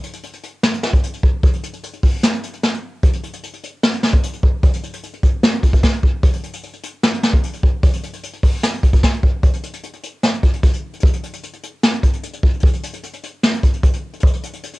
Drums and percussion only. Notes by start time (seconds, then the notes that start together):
0.03 closed hi-hat
0.13 closed hi-hat
0.23 closed hi-hat
0.33 closed hi-hat
0.43 closed hi-hat
0.63 snare
0.73 closed hi-hat
0.83 snare
0.93 kick, closed hi-hat
1.03 closed hi-hat
1.13 closed hi-hat
1.23 kick
1.43 kick, closed hi-hat
1.53 closed hi-hat
1.63 closed hi-hat
1.73 closed hi-hat
1.83 closed hi-hat
1.93 closed hi-hat
2.03 kick, open hi-hat
2.23 snare, hi-hat pedal
2.33 closed hi-hat
2.43 closed hi-hat
2.53 closed hi-hat
2.63 snare
2.73 closed hi-hat
3.03 kick, closed hi-hat
3.13 closed hi-hat
3.23 closed hi-hat
3.33 closed hi-hat
3.43 closed hi-hat
3.53 closed hi-hat
3.63 closed hi-hat
3.83 snare
3.93 closed hi-hat
4.03 snare
4.13 kick, closed hi-hat
4.23 closed hi-hat
4.33 closed hi-hat
4.43 kick
4.63 kick, closed hi-hat
4.73 closed hi-hat
4.83 closed hi-hat
4.93 closed hi-hat
5.03 closed hi-hat
5.13 closed hi-hat
5.23 kick, closed hi-hat
5.43 snare
5.53 closed hi-hat
5.63 kick, closed hi-hat
5.73 kick, closed hi-hat
5.83 kick, snare
5.93 closed hi-hat
6.03 kick
6.23 kick, closed hi-hat
6.33 closed hi-hat
6.43 closed hi-hat
6.53 closed hi-hat
6.63 closed hi-hat
6.73 closed hi-hat
6.83 closed hi-hat
7.03 snare
7.13 closed hi-hat
7.23 snare
7.33 kick, closed hi-hat
7.43 closed hi-hat
7.53 closed hi-hat
7.63 kick
7.83 kick, closed hi-hat
7.93 closed hi-hat
8.03 closed hi-hat
8.13 closed hi-hat
8.23 closed hi-hat
8.33 closed hi-hat
8.43 kick, open hi-hat
8.63 snare, hi-hat pedal
8.73 closed hi-hat
8.83 kick, closed hi-hat
8.93 kick, closed hi-hat
9.03 kick, snare
9.13 closed hi-hat
9.23 kick
9.43 kick, closed hi-hat
9.53 closed hi-hat
9.63 closed hi-hat
9.73 closed hi-hat
9.83 closed hi-hat
9.93 closed hi-hat
10.03 closed hi-hat
10.23 snare
10.33 closed hi-hat
10.43 kick, closed hi-hat
10.53 closed hi-hat
10.63 kick, closed hi-hat
10.73 closed hi-hat
10.93 closed hi-hat
11.00 kick, closed hi-hat
11.07 closed hi-hat
11.13 closed hi-hat
11.23 closed hi-hat
11.33 closed hi-hat
11.43 closed hi-hat
11.53 closed hi-hat
11.63 closed hi-hat
11.83 snare
11.93 closed hi-hat
12.03 kick, closed hi-hat
12.13 closed hi-hat
12.23 closed hi-hat
12.33 closed hi-hat
12.43 kick
12.53 closed hi-hat
12.60 kick, closed hi-hat
12.67 closed hi-hat
12.73 closed hi-hat
12.83 closed hi-hat
12.93 closed hi-hat
13.03 closed hi-hat
13.13 closed hi-hat
13.23 closed hi-hat
13.43 snare
13.53 closed hi-hat
13.63 kick, closed hi-hat
13.73 closed hi-hat
13.83 kick, closed hi-hat
13.93 closed hi-hat
14.13 closed hi-hat
14.20 kick, closed hi-hat
14.27 closed hi-hat
14.33 closed hi-hat
14.43 closed hi-hat
14.53 closed hi-hat
14.63 closed hi-hat
14.73 closed hi-hat